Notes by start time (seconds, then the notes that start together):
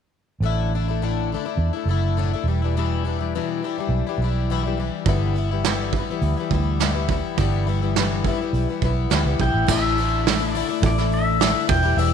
0.40 A1 A2 D3 A3 D4
0.46 E4
0.73 D3 A3 D4 E4
0.88 A3 D4 E4
1.02 A2 D3 A3 D4 E4
1.32 D3 A3 D4 E4
1.45 A3 D4 E4
1.57 E2
1.73 A3 D4 E4
1.85 F#1 D3 A3
1.90 D4 E4
2.17 A2 D3 A3 D4 E4
2.33 A3 D4 E4
2.44 E1 E3
2.48 G3 D4 E4
2.62 E3 G3 D4 E4
2.77 E2 B2 E3 G3 D4 E4
3.05 E3 G3 D4 E4
3.19 E3 G3 D4 E4
3.35 E2 B2 E3 G3 D4 E4
3.63 E3 G3 D4 E4
3.78 E3 G3 D4 E4
3.89 B1
4.07 E3 G3 D4 E4
4.18 B1 E3
4.22 G3 D4 E4
4.50 E2 B2 E3 G3 D4 E4
4.64 E3 G3 D4 E4
4.77 E3 G3 D4 E4
5.06 G1 G2 D3 E3 G3 B3 E4, kick, open hi-hat
5.34 E3 G3 B3, open hi-hat
5.38 E4
5.51 E3 G3 B3 E4
5.64 G2 D3 E3 G3 B3 E4, snare, open hi-hat
5.93 E3, kick, open hi-hat
5.97 G3 B3 E4
6.10 E3 G3 B3 E4
6.21 D2, open hi-hat
6.37 E3 G3 B3 E4
6.51 D2 E3 G3 B3 E4, kick, open hi-hat
6.80 G2 D3 E3 G3 B3 E4, snare, open hi-hat
6.94 E3 G3 B3 E4
7.08 E3 G3 B3 E4, kick, open hi-hat
7.37 G1 G2 D3 E3 G3 B3 E4, kick, open hi-hat
7.67 E3 G3 B3 E4, open hi-hat
7.82 E3 G3 B3 E4
7.96 G2 D3 E3 G3 B3, snare, open hi-hat
8.00 E4
8.24 E3 G3, kick, open hi-hat
8.29 B3 E4
8.41 E3 G3 B3 E4
8.53 B1, open hi-hat
8.69 E3 G3 B3 E4
8.82 B1 E3 G3 B3 E4, kick, open hi-hat
9.10 D2 G2 D3 E3 G3 B3 E4, snare, open hi-hat
9.25 C#2 E3 G3 B3 E4
9.38 B1 E3 G3 B3 E4 G5, kick, open hi-hat
9.54 A1
9.67 A1 A2 D3 A3 D4 E4, kick, crash
9.71 E5
9.97 D3 A3 D4 E4, open hi-hat
10.26 A2 D3 A3 D4 E4, snare, open hi-hat
10.39 A3 D4 E4
10.52 D3 A3 D5, open hi-hat
10.57 D4 E4
10.69 A3 D4 E4
10.82 A1 D5, kick, open hi-hat
10.98 A3 D4 E4, snare
11.12 E5, open hi-hat
11.40 A2 D3 A3 D4 E4, snare, open hi-hat
11.67 E1 E3 G3 D4 E4 G5, kick, open hi-hat
11.83 E3 G3 D4 E4
11.97 E1 E2 B2 E3 G3 D4 E4 E5, open hi-hat